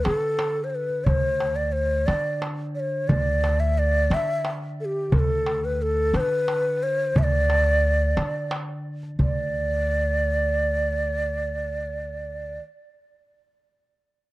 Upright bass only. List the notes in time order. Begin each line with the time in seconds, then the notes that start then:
0.06 D3
1.06 D2
2.08 D3
3.09 D2
4.10 D3
5.12 D2
6.13 D3
7.16 D2
8.17 D3
9.19 D2